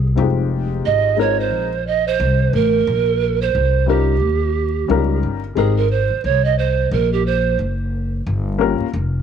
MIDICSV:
0, 0, Header, 1, 5, 480
1, 0, Start_track
1, 0, Key_signature, -4, "major"
1, 0, Tempo, 674157
1, 121, Time_signature, 4, 2, 24, 8
1, 6569, End_track
2, 0, Start_track
2, 0, Title_t, "Pan flute"
2, 0, Program_c, 0, 75
2, 612, Note_on_c, 0, 75, 90
2, 855, Note_on_c, 0, 73, 81
2, 866, Note_off_c, 0, 75, 0
2, 996, Note_on_c, 0, 72, 77
2, 1007, Note_off_c, 0, 73, 0
2, 1328, Note_off_c, 0, 72, 0
2, 1332, Note_on_c, 0, 75, 90
2, 1459, Note_off_c, 0, 75, 0
2, 1477, Note_on_c, 0, 72, 98
2, 1813, Note_on_c, 0, 70, 95
2, 1824, Note_off_c, 0, 72, 0
2, 2432, Note_on_c, 0, 72, 75
2, 2442, Note_off_c, 0, 70, 0
2, 2765, Note_off_c, 0, 72, 0
2, 2769, Note_on_c, 0, 67, 61
2, 3696, Note_off_c, 0, 67, 0
2, 3969, Note_on_c, 0, 68, 75
2, 4108, Note_on_c, 0, 70, 79
2, 4119, Note_off_c, 0, 68, 0
2, 4204, Note_off_c, 0, 70, 0
2, 4209, Note_on_c, 0, 72, 87
2, 4428, Note_off_c, 0, 72, 0
2, 4451, Note_on_c, 0, 73, 91
2, 4589, Note_on_c, 0, 75, 92
2, 4600, Note_off_c, 0, 73, 0
2, 4684, Note_off_c, 0, 75, 0
2, 4688, Note_on_c, 0, 72, 75
2, 4908, Note_off_c, 0, 72, 0
2, 4930, Note_on_c, 0, 70, 79
2, 5074, Note_on_c, 0, 67, 74
2, 5085, Note_off_c, 0, 70, 0
2, 5167, Note_off_c, 0, 67, 0
2, 5171, Note_on_c, 0, 72, 83
2, 5390, Note_off_c, 0, 72, 0
2, 6569, End_track
3, 0, Start_track
3, 0, Title_t, "Upright piano"
3, 0, Program_c, 1, 0
3, 110, Note_on_c, 1, 55, 57
3, 115, Note_on_c, 1, 60, 68
3, 121, Note_on_c, 1, 63, 64
3, 126, Note_on_c, 1, 65, 66
3, 131, Note_on_c, 1, 67, 76
3, 157, Note_on_c, 1, 56, 70
3, 170, Note_off_c, 1, 55, 0
3, 799, Note_off_c, 1, 60, 0
3, 802, Note_off_c, 1, 63, 0
3, 804, Note_off_c, 1, 65, 0
3, 807, Note_off_c, 1, 67, 0
3, 818, Note_off_c, 1, 56, 0
3, 828, Note_on_c, 1, 56, 70
3, 835, Note_on_c, 1, 60, 62
3, 840, Note_on_c, 1, 63, 59
3, 845, Note_on_c, 1, 65, 57
3, 849, Note_on_c, 1, 70, 77
3, 1188, Note_off_c, 1, 56, 0
3, 1191, Note_off_c, 1, 60, 0
3, 1194, Note_off_c, 1, 63, 0
3, 1197, Note_off_c, 1, 65, 0
3, 1199, Note_off_c, 1, 70, 0
3, 2750, Note_on_c, 1, 55, 69
3, 2757, Note_on_c, 1, 61, 62
3, 2762, Note_on_c, 1, 63, 65
3, 2768, Note_on_c, 1, 65, 59
3, 2773, Note_on_c, 1, 70, 74
3, 2937, Note_off_c, 1, 55, 0
3, 2940, Note_off_c, 1, 61, 0
3, 2943, Note_off_c, 1, 63, 0
3, 2946, Note_off_c, 1, 65, 0
3, 2948, Note_off_c, 1, 70, 0
3, 3476, Note_on_c, 1, 55, 80
3, 3480, Note_on_c, 1, 61, 71
3, 3485, Note_on_c, 1, 63, 65
3, 3491, Note_on_c, 1, 65, 65
3, 3495, Note_on_c, 1, 70, 82
3, 3832, Note_off_c, 1, 55, 0
3, 3834, Note_off_c, 1, 61, 0
3, 3837, Note_off_c, 1, 63, 0
3, 3839, Note_off_c, 1, 65, 0
3, 3842, Note_off_c, 1, 70, 0
3, 3955, Note_on_c, 1, 56, 69
3, 3961, Note_on_c, 1, 60, 58
3, 3965, Note_on_c, 1, 63, 63
3, 3970, Note_on_c, 1, 67, 63
3, 3975, Note_on_c, 1, 70, 79
3, 4139, Note_off_c, 1, 56, 0
3, 4142, Note_off_c, 1, 60, 0
3, 4144, Note_off_c, 1, 63, 0
3, 4147, Note_off_c, 1, 67, 0
3, 4149, Note_off_c, 1, 70, 0
3, 6112, Note_on_c, 1, 58, 80
3, 6116, Note_on_c, 1, 61, 78
3, 6121, Note_on_c, 1, 65, 70
3, 6127, Note_on_c, 1, 67, 68
3, 6131, Note_on_c, 1, 70, 91
3, 6298, Note_off_c, 1, 58, 0
3, 6300, Note_off_c, 1, 61, 0
3, 6302, Note_off_c, 1, 65, 0
3, 6305, Note_off_c, 1, 67, 0
3, 6307, Note_off_c, 1, 70, 0
3, 6569, End_track
4, 0, Start_track
4, 0, Title_t, "Upright bass"
4, 0, Program_c, 2, 32
4, 0, Note_on_c, 2, 36, 91
4, 110, Note_off_c, 2, 36, 0
4, 125, Note_on_c, 2, 29, 99
4, 579, Note_off_c, 2, 29, 0
4, 607, Note_on_c, 2, 32, 79
4, 1086, Note_off_c, 2, 32, 0
4, 1086, Note_on_c, 2, 34, 92
4, 1539, Note_off_c, 2, 34, 0
4, 1565, Note_on_c, 2, 36, 93
4, 1791, Note_off_c, 2, 36, 0
4, 1803, Note_on_c, 2, 33, 97
4, 2030, Note_off_c, 2, 33, 0
4, 2045, Note_on_c, 2, 34, 103
4, 2499, Note_off_c, 2, 34, 0
4, 2526, Note_on_c, 2, 36, 89
4, 3007, Note_off_c, 2, 36, 0
4, 3007, Note_on_c, 2, 39, 88
4, 3460, Note_off_c, 2, 39, 0
4, 3486, Note_on_c, 2, 37, 93
4, 3711, Note_off_c, 2, 37, 0
4, 3723, Note_on_c, 2, 31, 78
4, 3950, Note_off_c, 2, 31, 0
4, 3963, Note_on_c, 2, 32, 89
4, 4325, Note_off_c, 2, 32, 0
4, 4444, Note_on_c, 2, 36, 82
4, 4898, Note_off_c, 2, 36, 0
4, 4923, Note_on_c, 2, 34, 93
4, 5378, Note_off_c, 2, 34, 0
4, 5403, Note_on_c, 2, 30, 80
4, 5858, Note_off_c, 2, 30, 0
4, 5885, Note_on_c, 2, 31, 90
4, 6246, Note_off_c, 2, 31, 0
4, 6362, Note_on_c, 2, 29, 92
4, 6569, Note_off_c, 2, 29, 0
4, 6569, End_track
5, 0, Start_track
5, 0, Title_t, "Muted upright bass strokes"
5, 4347, Note_on_c, 9, 29, 49
5, 4418, Note_off_c, 9, 29, 0
5, 6266, Note_on_c, 9, 29, 46
5, 6337, Note_off_c, 9, 29, 0
5, 6569, End_track
0, 0, End_of_file